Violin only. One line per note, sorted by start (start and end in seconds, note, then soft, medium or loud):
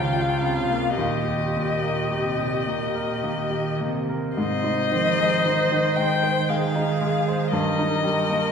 0.04 0.14 F5 soft
0.13 0.22 G5 soft
0.21 0.30 F5 soft
0.29 0.39 G5 soft
0.38 0.47 F5 soft
0.46 0.55 G5 soft
0.53 0.96 F5 medium
0.96 3.75 D#5 medium
4.37 5.97 D#5 medium
5.96 6.50 G5 medium
6.49 7.50 F5 soft
7.51 8.52 D#5 medium